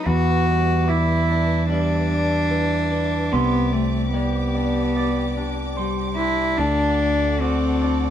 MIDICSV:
0, 0, Header, 1, 6, 480
1, 0, Start_track
1, 0, Key_signature, 1, "minor"
1, 0, Tempo, 816327
1, 36, Time_signature, 4, 2, 24, 8
1, 4763, End_track
2, 0, Start_track
2, 0, Title_t, "Clean electric guitar"
2, 0, Program_c, 0, 27
2, 0, Note_on_c, 0, 71, 61
2, 35, Note_off_c, 0, 71, 0
2, 35, Note_on_c, 0, 71, 59
2, 513, Note_off_c, 0, 71, 0
2, 515, Note_on_c, 0, 74, 55
2, 759, Note_off_c, 0, 74, 0
2, 759, Note_on_c, 0, 74, 56
2, 998, Note_off_c, 0, 74, 0
2, 998, Note_on_c, 0, 74, 64
2, 1476, Note_on_c, 0, 71, 61
2, 1705, Note_off_c, 0, 71, 0
2, 1713, Note_on_c, 0, 71, 57
2, 1955, Note_off_c, 0, 71, 0
2, 1958, Note_on_c, 0, 84, 67
2, 1975, Note_off_c, 0, 74, 0
2, 2433, Note_on_c, 0, 74, 60
2, 2437, Note_off_c, 0, 84, 0
2, 2676, Note_off_c, 0, 74, 0
2, 2676, Note_on_c, 0, 74, 54
2, 2921, Note_off_c, 0, 74, 0
2, 2921, Note_on_c, 0, 74, 72
2, 3390, Note_off_c, 0, 74, 0
2, 3392, Note_on_c, 0, 72, 63
2, 3626, Note_off_c, 0, 72, 0
2, 3633, Note_on_c, 0, 72, 60
2, 3874, Note_on_c, 0, 69, 68
2, 3875, Note_off_c, 0, 72, 0
2, 4355, Note_off_c, 0, 69, 0
2, 4357, Note_on_c, 0, 74, 62
2, 4589, Note_off_c, 0, 74, 0
2, 4597, Note_on_c, 0, 74, 57
2, 4763, Note_off_c, 0, 74, 0
2, 4763, End_track
3, 0, Start_track
3, 0, Title_t, "String section"
3, 0, Program_c, 1, 48
3, 0, Note_on_c, 1, 71, 51
3, 44, Note_on_c, 1, 76, 52
3, 45, Note_on_c, 1, 86, 58
3, 1937, Note_off_c, 1, 71, 0
3, 1941, Note_off_c, 1, 76, 0
3, 1955, Note_on_c, 1, 74, 51
3, 1961, Note_on_c, 1, 67, 56
3, 3856, Note_off_c, 1, 74, 0
3, 3859, Note_off_c, 1, 67, 0
3, 3875, Note_on_c, 1, 74, 57
3, 3879, Note_on_c, 1, 69, 61
3, 3880, Note_on_c, 1, 78, 58
3, 4763, Note_off_c, 1, 69, 0
3, 4763, Note_off_c, 1, 74, 0
3, 4763, Note_off_c, 1, 78, 0
3, 4763, Note_off_c, 1, 86, 0
3, 4763, End_track
4, 0, Start_track
4, 0, Title_t, "Cello"
4, 0, Program_c, 2, 42
4, 37, Note_on_c, 2, 66, 81
4, 524, Note_on_c, 2, 64, 75
4, 533, Note_off_c, 2, 66, 0
4, 998, Note_off_c, 2, 64, 0
4, 1001, Note_on_c, 2, 62, 73
4, 1954, Note_on_c, 2, 59, 76
4, 1963, Note_off_c, 2, 62, 0
4, 2189, Note_on_c, 2, 57, 63
4, 2198, Note_off_c, 2, 59, 0
4, 2427, Note_off_c, 2, 57, 0
4, 2431, Note_on_c, 2, 59, 58
4, 3370, Note_off_c, 2, 59, 0
4, 3623, Note_on_c, 2, 64, 68
4, 3866, Note_on_c, 2, 62, 74
4, 3875, Note_off_c, 2, 64, 0
4, 4346, Note_on_c, 2, 60, 69
4, 4355, Note_off_c, 2, 62, 0
4, 4763, Note_off_c, 2, 60, 0
4, 4763, End_track
5, 0, Start_track
5, 0, Title_t, "Clean electric guitar"
5, 0, Program_c, 3, 27
5, 40, Note_on_c, 3, 40, 51
5, 279, Note_on_c, 3, 55, 46
5, 516, Note_on_c, 3, 64, 53
5, 759, Note_on_c, 3, 62, 47
5, 991, Note_off_c, 3, 55, 0
5, 998, Note_on_c, 3, 55, 59
5, 1232, Note_off_c, 3, 62, 0
5, 1235, Note_on_c, 3, 62, 52
5, 1239, Note_off_c, 3, 40, 0
5, 1476, Note_on_c, 3, 52, 50
5, 1716, Note_off_c, 3, 62, 0
5, 1717, Note_off_c, 3, 64, 0
5, 1719, Note_on_c, 3, 62, 46
5, 1956, Note_off_c, 3, 52, 0
5, 1957, Note_on_c, 3, 48, 58
5, 1958, Note_off_c, 3, 55, 0
5, 1974, Note_off_c, 3, 62, 0
5, 2194, Note_on_c, 3, 60, 54
5, 2436, Note_on_c, 3, 67, 52
5, 2682, Note_on_c, 3, 62, 50
5, 3152, Note_off_c, 3, 62, 0
5, 3157, Note_off_c, 3, 48, 0
5, 3159, Note_on_c, 3, 62, 57
5, 3395, Note_off_c, 3, 60, 0
5, 3401, Note_on_c, 3, 55, 55
5, 3635, Note_off_c, 3, 62, 0
5, 3636, Note_off_c, 3, 67, 0
5, 3642, Note_on_c, 3, 62, 54
5, 3877, Note_on_c, 3, 50, 60
5, 3879, Note_off_c, 3, 55, 0
5, 3879, Note_off_c, 3, 62, 0
5, 4116, Note_on_c, 3, 57, 53
5, 4358, Note_on_c, 3, 66, 58
5, 4594, Note_on_c, 3, 62, 54
5, 4763, Note_off_c, 3, 50, 0
5, 4763, Note_off_c, 3, 57, 0
5, 4763, Note_off_c, 3, 62, 0
5, 4763, Note_off_c, 3, 66, 0
5, 4763, End_track
6, 0, Start_track
6, 0, Title_t, "Picked electric bass"
6, 0, Program_c, 4, 34
6, 38, Note_on_c, 4, 40, 59
6, 1934, Note_off_c, 4, 40, 0
6, 1962, Note_on_c, 4, 36, 60
6, 3856, Note_off_c, 4, 36, 0
6, 3876, Note_on_c, 4, 38, 58
6, 4763, Note_off_c, 4, 38, 0
6, 4763, End_track
0, 0, End_of_file